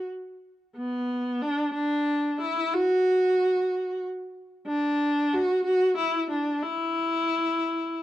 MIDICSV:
0, 0, Header, 1, 2, 480
1, 0, Start_track
1, 0, Tempo, 651466
1, 565, Time_signature, 6, 3, 24, 8
1, 5915, End_track
2, 0, Start_track
2, 0, Title_t, "Viola"
2, 0, Program_c, 0, 41
2, 564, Note_on_c, 0, 59, 74
2, 1045, Note_on_c, 0, 62, 78
2, 1056, Note_off_c, 0, 59, 0
2, 1272, Note_off_c, 0, 62, 0
2, 1277, Note_on_c, 0, 62, 84
2, 1731, Note_off_c, 0, 62, 0
2, 1774, Note_on_c, 0, 64, 87
2, 2014, Note_on_c, 0, 66, 100
2, 2025, Note_off_c, 0, 64, 0
2, 2968, Note_off_c, 0, 66, 0
2, 3442, Note_on_c, 0, 62, 88
2, 3930, Note_on_c, 0, 66, 91
2, 3941, Note_off_c, 0, 62, 0
2, 4159, Note_off_c, 0, 66, 0
2, 4163, Note_on_c, 0, 66, 96
2, 4386, Note_off_c, 0, 66, 0
2, 4398, Note_on_c, 0, 64, 88
2, 4624, Note_off_c, 0, 64, 0
2, 4644, Note_on_c, 0, 62, 75
2, 4883, Note_on_c, 0, 64, 85
2, 4894, Note_off_c, 0, 62, 0
2, 5915, Note_off_c, 0, 64, 0
2, 5915, End_track
0, 0, End_of_file